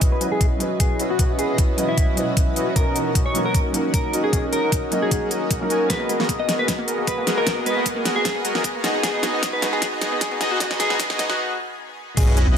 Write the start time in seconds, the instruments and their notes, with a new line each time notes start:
Already playing: ambient pad B2 E3 B3 C#4 F#4 D#5, supersaw synth C#4 E4 F#4 B4 D#5
0.01 kick, closed hi-hat
0.12 clean electric guitar B4
0.20 felt piano F#3 C#4 E4 B4 D#5, closed hi-hat
0.32 clean electric guitar G#4
0.41 kick, closed hi-hat
0.59 felt piano F#3 C#4 E4 B4 D#5, closed hi-hat
0.80 clean electric guitar G#4, kick, closed hi-hat
1.00 supersaw synth C#4 E4 F#4 B4 D#5, closed hi-hat
1.10 clean electric guitar F#4
1.19 supersaw synth E4 B4 D#5, kick, closed hi-hat
1.39 clean electric guitar G#4, closed hi-hat
1.49 supersaw synth C#4 E4 F#4 B4 D#5
1.58 kick, closed hi-hat
1.77 felt piano F#3 C#4 E4 D#5, closed hi-hat
1.89 clean electric guitar E4
1.98 kick, closed hi-hat
2.15 felt piano F#3 C#4 E4 B4 D#5, closed hi-hat
2.37 kick, closed hi-hat
2.56 supersaw synth C#4 E4 F#4 B4 D#5, closed hi-hat
2.76 ambient pad D#3, supersaw synth C#4 D#4 F#4 A#4 D#5, clean electric guitar A#4, kick, closed hi-hat
2.96 closed hi-hat
3.06 supersaw synth C#4 D#4 F#4 A#4 D#5
3.15 kick, closed hi-hat
3.26 clean electric guitar C#5
3.34 felt piano F#3 A#3 C#4 D#4 A#4, closed hi-hat
3.46 clean electric guitar A#4
3.54 kick, closed hi-hat
3.72 felt piano F#3 A#3 C#4 D#4, closed hi-hat
3.76 felt piano A#4
3.94 clean electric guitar A#4, kick, closed hi-hat
4.13 supersaw synth C#4 D#4 F#4 A#4 D#5, closed hi-hat
4.24 clean electric guitar G#4
4.33 supersaw synth C#4 D#4 F#4 A#4 D#5, kick, closed hi-hat
4.53 clean electric guitar A#4, closed hi-hat
4.63 supersaw synth C#4 D#4 F#4 A#4 D#5
4.72 kick, closed hi-hat
4.91 felt piano F#3 A#3 C#4 D#4 D#5, closed hi-hat
5.02 clean electric guitar G#4
5.11 kick, closed hi-hat
5.31 closed hi-hat
5.51 kick, closed hi-hat
5.60 felt piano F#3 A#3 C#4 D#4 A#4
5.70 supersaw synth C#4 D#4 F#4 A#4 G#5, closed hi-hat
5.90 ambient pad B2 F#3 B3 G#4 A#4, synth arpeggio sound G#3, supersaw synth B3 F#4 G#4, clean electric guitar B4, kick, snare, closed hi-hat
6.00 synth arpeggio sound A#3
6.09 synth arpeggio sound G#3, closed hi-hat
6.20 synth arpeggio sound A#3, supersaw synth B3 F#4 G#4 A#4 D#5, snare
6.29 synth arpeggio sound B3, kick, closed hi-hat
6.39 synth arpeggio sound A#3, clean electric guitar D#5
6.48 synth arpeggio sound G#3, snare, closed hi-hat
6.59 synth arpeggio sound A#3, clean electric guitar B4
6.68 synth arpeggio sound G#3, kick, snare, closed hi-hat
6.79 synth arpeggio sound A#3
6.88 synth arpeggio sound B3, closed hi-hat
6.98 synth arpeggio sound A#3
7.07 synth arpeggio sound G#3, clean electric guitar B4, kick, closed hi-hat
7.18 synth arpeggio sound A#3
7.27 synth arpeggio sound G#3, supersaw synth B3 F#4 G#4 A#4 D#5, snare, closed hi-hat
7.37 synth arpeggio sound A#3, clean electric guitar A#4
7.46 synth arpeggio sound B3, supersaw synth B3 F#4 G#4 A#4 D#5, kick, snare, closed hi-hat
7.57 synth arpeggio sound A#3
7.66 synth arpeggio sound G#3, clean electric guitar B4, closed hi-hat
7.77 synth arpeggio sound A#3, supersaw synth B3 F#4 G#4 A#4 D#5
7.86 synth arpeggio sound G#3, kick, closed hi-hat
7.96 synth arpeggio sound A#3
8.05 synth arpeggio sound B3, snare, closed hi-hat
8.16 synth arpeggio sound A#3, clean electric guitar G#4
8.25 synth arpeggio sound G#3, kick, snare, closed hi-hat
8.36 synth arpeggio sound A#3
8.45 synth arpeggio sound G#3, closed hi-hat
8.55 synth arpeggio sound A#3, snare
8.64 synth arpeggio sound B3, kick, closed hi-hat
8.75 synth arpeggio sound A#3
8.84 ambient pad D#3 G#4, synth arpeggio sound G#3, supersaw synth B3 D#4 F#4 G#4 D#5, snare, closed hi-hat
8.95 synth arpeggio sound B3
9.03 synth arpeggio sound G#3, supersaw synth B3 D#4 F#4 G#4 D#5, clean electric guitar G#4, kick, snare, closed hi-hat
9.14 synth arpeggio sound B3
9.23 synth arpeggio sound D#4, snare, closed hi-hat
9.33 supersaw synth B3 D#4 F#4 G#4 D#5, synth arpeggio sound B3
9.43 synth arpeggio sound G#3, kick, snare, closed hi-hat
9.53 synth arpeggio sound B3, clean electric guitar B4
9.62 synth arpeggio sound G#3, snare, closed hi-hat
9.73 synth arpeggio sound B3, clean electric guitar G#4
9.82 synth arpeggio sound D#4, kick, snare, closed hi-hat
9.92 synth arpeggio sound B3
10.01 synth arpeggio sound G#3, snare, closed hi-hat
10.12 synth arpeggio sound B3
10.21 synth arpeggio sound G#3, clean electric guitar G#4, kick, snare, closed hi-hat
10.31 synth arpeggio sound B3
10.41 supersaw synth B3 D#4 F#4 G#4 D#5, synth arpeggio sound D#4, snare, closed hi-hat
10.51 synth arpeggio sound B3, clean electric guitar F#4
10.60 synth arpeggio sound G#3, supersaw synth B3 D#4 F#4 G#4 D#5, kick, snare, closed hi-hat
10.71 synth arpeggio sound B3, snare
10.80 synth arpeggio sound G#3, clean electric guitar G#4, snare, closed hi-hat
10.90 synth arpeggio sound B3, supersaw synth B3 D#4 F#4 G#4 D#5, snare
10.99 synth arpeggio sound D#4, kick, snare, closed hi-hat
11.10 synth arpeggio sound B3, snare
11.19 synth arpeggio sound G#3, snare, closed hi-hat
11.30 synth arpeggio sound B3, clean electric guitar F#4, snare
12.17 sub bass B1, synth arpeggio sound G#3, supersaw synth C#4 E4 F#4 B4 D#5, clean electric guitar G#4, kick, closed hi-hat, crash, sub drop
12.28 synth arpeggio sound B3
12.37 synth arpeggio sound C#4, closed hi-hat
12.47 sub bass B1, synth arpeggio sound B3, supersaw synth C#4 E4 F#4 B4 D#5